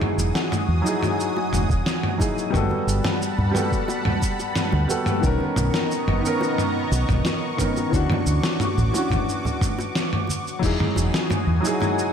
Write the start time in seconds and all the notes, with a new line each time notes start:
Already playing: F#3 D#4 E4 F#4 G#4 G#5 D#6
0.01 mid tom, high conga
0.18 E1, high bongo, shaker
0.35 snare, shaker
0.52 mid tom, high bongo, shaker
0.68 E2
0.82 F#3 D#4 E4
0.86 G#4, shaker
1.03 mid tom, high bongo, shaker
1.20 shaker
1.37 high bongo
1.53 E1, mid tom, shaker
1.69 E1, kick, low conga, shaker
1.86 snare, high bongo, shaker
2.03 mid tom
2.18 F#3 D#4 E4 G#4, kick, high bongo, high conga, shaker
2.38 shaker
2.50 G1 G3 B3, kick, mid tom
2.54 G3 F#4 A4 F#5 A5 B5, shaker
2.70 high bongo, high conga
2.87 G1, shaker
3.04 snare, mid tom, high bongo, shaker
3.22 shaker
3.38 G2, low conga
3.51 G3 B3, mid tom, high bongo
3.56 F#4 A4, shaker
3.72 kick, shaker
3.88 high bongo, shaker
4.05 mid tom, low conga
4.22 kick, shaker
4.39 high bongo, shaker
4.56 snare, mid tom, shaker
4.72 D2, high bongo
4.88 G3 B3 F#4 A4, high conga, shaker
5.06 mid tom, shaker
5.20 B1 D#3 B3 D#5 A#5 C#6, kick, high bongo, shaker
5.24 B3 C#4 A#4
5.40 high conga
5.56 B1, mid tom, high bongo, shaker
5.74 snare, shaker
5.91 shaker
6.08 F#1, mid tom, high bongo
6.21 D#3 B3
6.25 C#4 A#4, shaker
6.41 high bongo, shaker
6.58 mid tom, shaker
6.91 B1, high bongo, shaker
7.09 B1, kick, mid tom, low conga, shaker
7.25 snare, high bongo, shaker
7.57 D#3 B3 C#4 A#4, kick, mid tom, high conga, shaker
7.77 high bongo, shaker
7.89 D2 E3 C#4, kick
7.93 D4 F#4 D6, shaker
8.10 mid tom, high bongo, high conga
8.26 D2, shaker
8.43 snare, shaker
8.60 mid tom, high bongo, shaker
8.78 A1, low conga, shaker
8.91 E3 C#4, high bongo, shaker
8.95 D4 F#4
9.10 kick, mid tom, low conga, shaker
9.29 shaker
9.45 high bongo, low conga, shaker
9.61 kick, mid tom, shaker
9.79 high bongo, shaker
9.95 snare, shaker
10.13 mid tom
10.27 high bongo, high conga, shaker
10.47 shaker
10.59 E1 F#3 D#4, kick, crash
10.63 E4 F#4 G#4 G#5 D#6, shaker
10.80 mid tom, high conga
10.96 E1, high bongo, shaker
11.14 snare, shaker
11.30 mid tom, high bongo, shaker
11.47 E2
11.60 F#3 D#4
11.65 E4 G#4, shaker
11.80 mid tom, high bongo, shaker
11.99 shaker